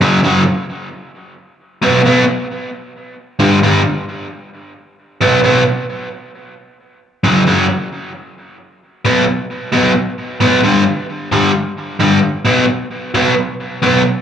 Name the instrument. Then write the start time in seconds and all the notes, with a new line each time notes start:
overdriven electric guitar
0.01 F#2 C#3 F#3
0.24 F#2 C#3 F#3
1.82 B2 F#3 B3
2.05 B2 F#3 B3
3.39 G2 D3 G3
3.63 G2 D3 G3
5.21 B2 F#3 B3
5.44 B2 F#3 B3
7.24 F#2 C#3 F#3
7.47 F#2 C#3 F#3
9.05 B2 F#3 B3
9.73 B2 F#3 B3
10.41 B2 F#3 B3
10.63 G2 D3 G3
11.32 G2 D3 G3
12.00 G2 D3 G3
12.45 B2 F#3 B3
13.14 B2 F#3 B3
13.82 B2 F#3 B3